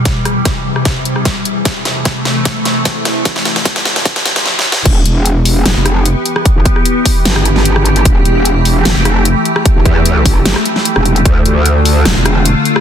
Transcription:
<<
  \new Staff \with { instrumentName = "Ambient pad" } { \clef bass \time 4/4 \key e \phrygian \tempo 4 = 150 << { <e, g>1 | <c a>1 | <d, f>2. r4 | <e g'>1~ |
<e g'>1~ | <e g'>1~ | <e g'>1 | <d f'>1 | } \\ { c1 | e1 | a,2. r4 | b1~ |
b1 | a1~ | a1~ | a1 | } >> }
  \new Staff \with { instrumentName = "Wobble bass" } { \clef bass \time 4/4 \key e \phrygian r1 | r1 | r1 | e,,8 e,,4. f,,16 f,,4 r8. |
r16 g,,16 r4. g,,2 | e,,8 e,,4. f,,16 f,,4 r8. | r16 g,,16 e,4 g,,8. r4 e,,8. | d,8 d,4. e,,16 e,,4 r8. | }
  \new DrumStaff \with { instrumentName = "Drums" } \drummode { \time 4/4 <hh bd sn>8 <hh ss>8 <hh bd ss sn>8. ss16 <hh bd sn>8 hh16 ss16 <hh bd sn>8 hh8 | <hh bd sn>8 <hh sn>8 <hh bd sn>8 sn8 <hh bd sn>8 <hh sn>8 <hh bd sn>8 <hh sn>8 | <hh bd sn>16 sn16 <hh sn>16 sn16 <hh bd sn>16 sn16 sn16 sn16 <hh bd sn>16 sn16 <hh sn>16 sn16 \tuplet 3/2 { sn8 sn8 sn8 } | <cymc hh bd>8 hh8 hh8 hho8 <hh ss sn>8 <hh ss>8 hh8 hh16 ss16 |
<hh bd>8 <hh bd>16 ss16 hh8 <hho bd>8 <hh sn>16 ss16 hh16 sn16 hh16 ss16 hh16 hh16 | <hh bd>8 hh8 hh8 hho8 <hh ss sn>8 <hh ss>8 hh8 hh16 ss16 | <hh bd>8 <hh bd>16 ss16 hh8 <hho bd>8 <hh sn>16 ss16 hh16 sn16 hh16 ss16 hh16 hh16 | <hh bd>8 hh8 hh8 hho8 <hh ss sn>8 <hh ss>8 hh8 hh16 ss16 | }
>>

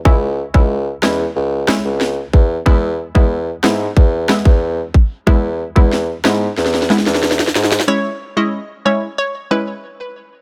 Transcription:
<<
  \new Staff \with { instrumentName = "Synth pluck" } { \time 4/4 \key cis \minor \tempo 4 = 92 r1 | r1 | r1 | cis''16 r8 dis''16 r8 cis''16 r16 cis''16 r16 b'16 r4 r16 | }
  \new Staff \with { instrumentName = "Synth stab" } { \time 4/4 \key cis \minor <gis cis' e'>16 r8 <gis cis' e'>16 r8 <gis cis' e'>16 r8. <gis cis' e'>16 r4 r16 | <gis b e'>16 r8 <gis b e'>16 r8 <gis b e'>16 r8. <gis b e'>16 r4 r16 | <gis b e'>16 r8 <gis b e'>16 r8 <gis b e'>16 r8. <gis b e'>16 r4 r16 | <gis cis' e'>16 r8 <gis cis' e'>16 r8 <gis cis' e'>16 r8. <gis cis' e'>16 r4 r16 | }
  \new Staff \with { instrumentName = "Bassoon" } { \clef bass \time 4/4 \key cis \minor cis,8. cis,8. e,8 cis,8. cis,8. e,8 | e,8. e,8. gis,8 e,8. e,8. r8 | e,8. e,8. gis,8 e,8. e,8. gis,8 | r1 | }
  \new DrumStaff \with { instrumentName = "Drums" } \drummode { \time 4/4 bd8. bd16 r8 <ss sn>8 r8 <ss sn>8 sn8 bd8 | bd8. bd16 r8 <ss sn>8 bd8 <ss sn>16 bd16 r8 bd8 | bd8. bd16 sn8 <ss sn>8 sn32 sn32 sn32 sn32 sn32 sn32 sn32 sn32 sn32 sn32 sn32 sn32 sn32 sn32 sn32 sn32 | r4 r4 r4 r4 | }
>>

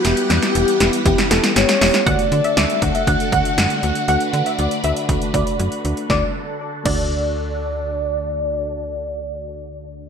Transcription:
<<
  \new Staff \with { instrumentName = "Analog polysynth" } { \time 4/4 \key d \major \tempo 4 = 119 r1 | fis''8 r16 e''16 d''16 r8 e''16 fis''8 fis''16 r4 r16 | fis''16 r8 e''16 d''8 e''16 r8. d''8. r8. | d''8 r4 d''4. r4 |
r1 | }
  \new Staff \with { instrumentName = "Soft synth lead" } { \time 4/4 \key d \major g'2~ g'8 a'8 cis''4 | d''8 d''8 e''8 fis''2~ fis''8~ | fis''2. r4 | d''8 r4 d''2~ d''8~ |
d''1 | }
  \new Staff \with { instrumentName = "String machine" } { \time 4/4 \key d \major << { <e b fis''>1 | <d d' fis'>1~ | <d d' fis'>1 | <d d' fis' a'>1~ |
<d d' fis' a'>1 | } \\ { g'1 | a'1 | b'1 | r1 |
r1 | } >> }
  \new Staff \with { instrumentName = "FM electric piano" } { \time 4/4 \key d \major <b e' g'>8 <b e' g'>8 <b e' g'>8 <b e' g'>8 <b e' g'>8 <b e' g'>8 <b e' g'>8 <b e' g'>8 | <a d' fis'>8 <a d' fis'>8 <a d' fis'>8 <a d' fis'>8 <a d' fis'>8 <a d' fis'>8 <a d' fis'>8 <a d' fis'>8 | <a d' fis'>8 <a d' fis'>8 <a d' fis'>8 <a d' fis'>8 <a d' fis'>8 <a d' fis'>8 <a d' fis'>8 <a d' fis'>8 | <a d' fis'>8 r4 <a d' fis'>2~ <a d' fis'>8~ |
<a d' fis'>1 | }
  \new Staff \with { instrumentName = "FM bass" } { \clef bass \time 4/4 \key d \major e,,16 r16 e,16 r16 e,,16 r16 e,,16 r16 e,,16 r16 e,,16 r16 g,,16 r16 e,,16 r16 | d,16 r16 d16 r16 d,16 r16 d,16 r16 d,16 r16 d,16 r16 fis,16 r16 d,16 r16 | d,16 r16 d16 r16 d,16 r16 d,16 r16 d,16 r16 d,16 r16 fis,16 r16 d,16 r16 | d,8 r4 d,2~ d,8~ |
d,1 | }
  \new DrumStaff \with { instrumentName = "Drums" } \drummode { \time 4/4 <hh sn>16 hh16 <hh sn>16 <hh sn>16 hh16 hh16 <hh sn>16 hh16 <hh bd>16 <hh sn>16 <hh sn>16 <hh sn>16 <hh sn>16 <hh sn>16 <hho sn>16 <hh sn>16 | <hh bd>16 hh16 hh16 hh16 <hh sn>16 hh16 <hh bd>16 hh16 <hh bd>16 hh16 <hh bd>16 hh16 <hh sn>16 hh16 hh16 hh16 | hh16 hh16 hh16 hh16 hh16 hh16 hh16 hh16 <hh bd>16 hh16 <hh bd>16 hh16 hh16 hh16 hh16 hh16 | <bd sn>4 r8 <cymc bd>8 r4 r4 |
r4 r4 r4 r4 | }
>>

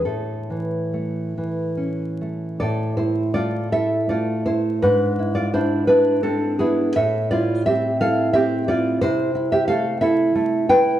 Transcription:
\new Staff \with { instrumentName = "Nylon-string guitar" } { \time 6/8 \key a \major \tempo 4. = 56 << { a'2~ a'8 r8 | \key a \minor <a' d''>8 <e' c''>8 <f' d''>8 <a' e''>8 <f' d''>8 <e' c''>8 | <d' b'>8. <f' d''>16 <e' c''>8 <d' b'>8 <c' a'>8 <b gis'>8 | <a' e''>8 <f' d''>8 <g' e''>8 <a' f''>8 <g' e''>8 <f' d''>8 |
<e' c''>8. <g' e''>16 <a' f''>8 <a' e''>4 <b' g''>8 | } \\ { a,8 e8 a8 e8 cis'8 a8 | a,4 a8 e'8 a4 | gis,8 e'8 d'8 e'8 d'8 e'8 | a,8 e'8 c'8 e'8 c'8 e'8 |
c8 e'8 a8 e'8 a8 e'8 | } >> }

